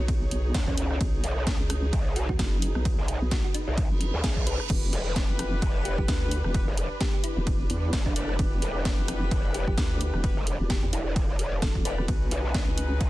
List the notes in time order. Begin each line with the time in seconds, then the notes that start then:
Already playing: D#4 G#4 C#5
0.00 B1
0.08 kick, ride
0.31 B1, open hi-hat
0.54 D#2, kick, snare, ride
0.68 C#4, kick
0.78 C#2, open hi-hat
0.91 cross-stick
1.01 B1, kick, ride
1.24 B1, open hi-hat
1.47 kick, snare, ride
1.60 C#2
1.70 cross-stick, open hi-hat
1.93 B1, kick, ride
2.07 B4
2.16 F#4, open hi-hat
2.29 D#2 F#4, kick
2.39 F#1, kick, snare, ride
2.62 open hi-hat
2.75 B1, cross-stick
2.85 kick, ride
2.98 B1
3.08 open hi-hat
3.21 B1
3.31 F#4, kick, snare, ride
3.44 F#4
3.54 D#4, open hi-hat
3.68 B1
3.78 kick, ride, reverse cymbal
3.91 F#1
4.01 open hi-hat
4.14 D#2
4.24 B1 G#4, kick, snare, ride
4.37 kick
4.47 B4, open hi-hat
4.60 B4, cross-stick
4.70 E1 B3 D4 E4 G4 B4, kick, ride, crash
4.79 G4
4.93 E1, open hi-hat
5.16 kick, snare, ride
5.29 F1
5.39 cross-stick, open hi-hat
5.62 E1, kick, ride
5.85 G4, open hi-hat
5.98 G1 G4, kick
6.08 D2, kick, snare, ride
6.31 open hi-hat
6.44 E1, cross-stick
6.54 B3 E4 G4 B4, kick, ride
6.68 E1
6.77 open hi-hat
7.01 G4, kick, snare, ride
7.14 G4
7.24 E4, open hi-hat
7.37 E1
7.47 kick, ride
7.70 E2, open hi-hat
7.93 G1, kick, snare, ride
8.06 D4, kick
8.16 F1 B3 E4 G4 D5, open hi-hat
8.29 cross-stick
8.39 E1 B3 E4 G4 B4, kick, ride
8.62 E1, open hi-hat
8.85 kick, snare, ride
8.98 F1
9.08 cross-stick, open hi-hat
9.31 E1, kick, ride
9.54 G4, open hi-hat
9.68 G1 G4, kick
9.78 D2, kick, snare, ride
10.01 open hi-hat
10.14 E1, cross-stick
10.24 B3 E4 G4 B4, kick, ride
10.37 E1
10.47 open hi-hat
10.60 E1
10.70 G4, kick, snare, ride
10.83 E2 G4
10.93 E1 E4, open hi-hat
11.16 kick, ride
11.39 E1, open hi-hat
11.62 E1 A4, kick, snare, ride
11.75 kick
11.85 E1 B3 E4 G4 B4 D5, open hi-hat
11.98 E1 B4, cross-stick
12.08 B1 C#4 D#4 F#4 B4, kick, ride
12.31 B1 G#4, open hi-hat
12.54 kick, snare, ride
12.68 C#2
12.78 open hi-hat
13.01 B1, kick, ride